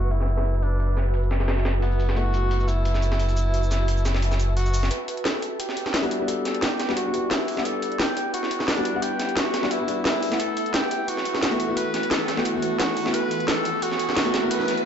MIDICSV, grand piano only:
0, 0, Header, 1, 2, 480
1, 0, Start_track
1, 0, Key_signature, 1, "minor"
1, 0, Tempo, 342857
1, 1114, Time_signature, 4, 2, 24, 8
1, 20793, End_track
2, 0, Start_track
2, 0, Title_t, "Grand piano"
2, 0, Program_c, 0, 0
2, 0, Note_on_c, 0, 57, 72
2, 0, Note_on_c, 0, 59, 66
2, 0, Note_on_c, 0, 64, 68
2, 0, Note_on_c, 0, 66, 81
2, 2987, Note_off_c, 0, 57, 0
2, 3005, Note_off_c, 0, 59, 0
2, 3008, Note_on_c, 0, 57, 73
2, 3013, Note_off_c, 0, 64, 0
2, 3021, Note_off_c, 0, 66, 0
2, 3026, Note_on_c, 0, 59, 67
2, 3043, Note_on_c, 0, 64, 66
2, 3060, Note_on_c, 0, 66, 82
2, 6835, Note_off_c, 0, 57, 0
2, 6843, Note_off_c, 0, 59, 0
2, 6852, Note_off_c, 0, 64, 0
2, 6861, Note_off_c, 0, 66, 0
2, 8429, Note_on_c, 0, 55, 85
2, 8439, Note_on_c, 0, 59, 76
2, 8446, Note_on_c, 0, 62, 76
2, 8454, Note_on_c, 0, 66, 93
2, 8639, Note_off_c, 0, 55, 0
2, 8650, Note_off_c, 0, 59, 0
2, 8654, Note_off_c, 0, 62, 0
2, 8658, Note_off_c, 0, 66, 0
2, 8660, Note_on_c, 0, 55, 86
2, 8678, Note_on_c, 0, 59, 76
2, 8694, Note_on_c, 0, 62, 78
2, 8711, Note_on_c, 0, 66, 95
2, 9601, Note_off_c, 0, 55, 0
2, 9610, Note_off_c, 0, 59, 0
2, 9618, Note_off_c, 0, 62, 0
2, 9626, Note_off_c, 0, 66, 0
2, 9632, Note_on_c, 0, 55, 90
2, 9639, Note_on_c, 0, 59, 84
2, 9648, Note_on_c, 0, 62, 84
2, 9657, Note_on_c, 0, 66, 98
2, 9847, Note_off_c, 0, 55, 0
2, 9850, Note_off_c, 0, 59, 0
2, 9855, Note_off_c, 0, 62, 0
2, 9859, Note_off_c, 0, 66, 0
2, 9871, Note_on_c, 0, 55, 82
2, 9880, Note_on_c, 0, 59, 74
2, 9888, Note_on_c, 0, 62, 74
2, 9897, Note_on_c, 0, 66, 90
2, 9947, Note_off_c, 0, 55, 0
2, 9964, Note_off_c, 0, 59, 0
2, 9968, Note_on_c, 0, 55, 81
2, 9974, Note_off_c, 0, 62, 0
2, 9979, Note_off_c, 0, 66, 0
2, 9985, Note_on_c, 0, 59, 74
2, 10001, Note_on_c, 0, 62, 72
2, 10019, Note_on_c, 0, 66, 89
2, 10557, Note_off_c, 0, 55, 0
2, 10568, Note_off_c, 0, 59, 0
2, 10576, Note_off_c, 0, 62, 0
2, 10578, Note_on_c, 0, 55, 76
2, 10585, Note_off_c, 0, 66, 0
2, 10595, Note_on_c, 0, 59, 72
2, 10612, Note_on_c, 0, 62, 71
2, 10628, Note_on_c, 0, 78, 81
2, 12240, Note_off_c, 0, 55, 0
2, 12248, Note_off_c, 0, 59, 0
2, 12257, Note_off_c, 0, 62, 0
2, 12265, Note_off_c, 0, 78, 0
2, 12270, Note_on_c, 0, 55, 86
2, 12278, Note_on_c, 0, 59, 78
2, 12287, Note_on_c, 0, 62, 80
2, 12295, Note_on_c, 0, 66, 94
2, 12474, Note_off_c, 0, 55, 0
2, 12490, Note_off_c, 0, 59, 0
2, 12494, Note_off_c, 0, 62, 0
2, 12495, Note_on_c, 0, 55, 85
2, 12498, Note_off_c, 0, 66, 0
2, 12511, Note_on_c, 0, 59, 80
2, 12528, Note_on_c, 0, 62, 80
2, 12545, Note_on_c, 0, 78, 95
2, 13438, Note_off_c, 0, 55, 0
2, 13446, Note_off_c, 0, 59, 0
2, 13455, Note_off_c, 0, 62, 0
2, 13463, Note_off_c, 0, 78, 0
2, 13469, Note_on_c, 0, 55, 93
2, 13477, Note_on_c, 0, 59, 84
2, 13486, Note_on_c, 0, 62, 84
2, 13493, Note_on_c, 0, 66, 100
2, 13685, Note_off_c, 0, 55, 0
2, 13689, Note_off_c, 0, 59, 0
2, 13694, Note_off_c, 0, 62, 0
2, 13698, Note_off_c, 0, 66, 0
2, 13710, Note_on_c, 0, 55, 82
2, 13718, Note_on_c, 0, 59, 74
2, 13727, Note_on_c, 0, 62, 72
2, 13736, Note_on_c, 0, 66, 90
2, 13788, Note_off_c, 0, 55, 0
2, 13803, Note_off_c, 0, 59, 0
2, 13809, Note_on_c, 0, 55, 81
2, 13814, Note_off_c, 0, 62, 0
2, 13818, Note_off_c, 0, 66, 0
2, 13824, Note_on_c, 0, 59, 74
2, 13843, Note_on_c, 0, 62, 76
2, 13859, Note_on_c, 0, 66, 87
2, 14400, Note_off_c, 0, 55, 0
2, 14408, Note_off_c, 0, 59, 0
2, 14417, Note_off_c, 0, 62, 0
2, 14417, Note_on_c, 0, 57, 75
2, 14425, Note_off_c, 0, 66, 0
2, 14433, Note_on_c, 0, 59, 69
2, 14451, Note_on_c, 0, 64, 70
2, 14468, Note_on_c, 0, 78, 81
2, 16079, Note_off_c, 0, 57, 0
2, 16087, Note_off_c, 0, 59, 0
2, 16096, Note_off_c, 0, 64, 0
2, 16105, Note_off_c, 0, 78, 0
2, 16111, Note_on_c, 0, 57, 86
2, 16119, Note_on_c, 0, 59, 77
2, 16129, Note_on_c, 0, 64, 78
2, 16137, Note_on_c, 0, 66, 96
2, 16317, Note_off_c, 0, 57, 0
2, 16330, Note_off_c, 0, 59, 0
2, 16335, Note_off_c, 0, 64, 0
2, 16338, Note_on_c, 0, 57, 88
2, 16339, Note_off_c, 0, 66, 0
2, 16356, Note_on_c, 0, 59, 81
2, 16371, Note_on_c, 0, 64, 82
2, 16389, Note_on_c, 0, 66, 95
2, 17280, Note_off_c, 0, 57, 0
2, 17289, Note_off_c, 0, 59, 0
2, 17296, Note_off_c, 0, 64, 0
2, 17306, Note_off_c, 0, 66, 0
2, 17308, Note_on_c, 0, 57, 92
2, 17317, Note_on_c, 0, 59, 85
2, 17324, Note_on_c, 0, 64, 83
2, 17332, Note_on_c, 0, 66, 98
2, 17525, Note_off_c, 0, 57, 0
2, 17529, Note_off_c, 0, 59, 0
2, 17533, Note_off_c, 0, 64, 0
2, 17537, Note_off_c, 0, 66, 0
2, 17549, Note_on_c, 0, 57, 82
2, 17557, Note_on_c, 0, 59, 75
2, 17565, Note_on_c, 0, 64, 75
2, 17573, Note_on_c, 0, 66, 89
2, 17625, Note_off_c, 0, 57, 0
2, 17642, Note_off_c, 0, 59, 0
2, 17646, Note_on_c, 0, 57, 84
2, 17653, Note_off_c, 0, 64, 0
2, 17657, Note_off_c, 0, 66, 0
2, 17663, Note_on_c, 0, 59, 76
2, 17681, Note_on_c, 0, 64, 76
2, 17697, Note_on_c, 0, 66, 93
2, 18236, Note_off_c, 0, 57, 0
2, 18247, Note_off_c, 0, 59, 0
2, 18256, Note_off_c, 0, 64, 0
2, 18257, Note_on_c, 0, 57, 78
2, 18264, Note_off_c, 0, 66, 0
2, 18274, Note_on_c, 0, 59, 72
2, 18291, Note_on_c, 0, 64, 70
2, 18307, Note_on_c, 0, 66, 89
2, 19919, Note_off_c, 0, 57, 0
2, 19928, Note_off_c, 0, 59, 0
2, 19936, Note_off_c, 0, 64, 0
2, 19944, Note_off_c, 0, 66, 0
2, 19949, Note_on_c, 0, 57, 85
2, 19956, Note_on_c, 0, 59, 79
2, 19965, Note_on_c, 0, 64, 80
2, 19974, Note_on_c, 0, 66, 94
2, 20154, Note_off_c, 0, 57, 0
2, 20169, Note_off_c, 0, 59, 0
2, 20173, Note_off_c, 0, 64, 0
2, 20175, Note_on_c, 0, 57, 92
2, 20178, Note_off_c, 0, 66, 0
2, 20192, Note_on_c, 0, 59, 83
2, 20209, Note_on_c, 0, 64, 81
2, 20226, Note_on_c, 0, 66, 97
2, 20793, Note_off_c, 0, 57, 0
2, 20793, Note_off_c, 0, 59, 0
2, 20793, Note_off_c, 0, 64, 0
2, 20793, Note_off_c, 0, 66, 0
2, 20793, End_track
0, 0, End_of_file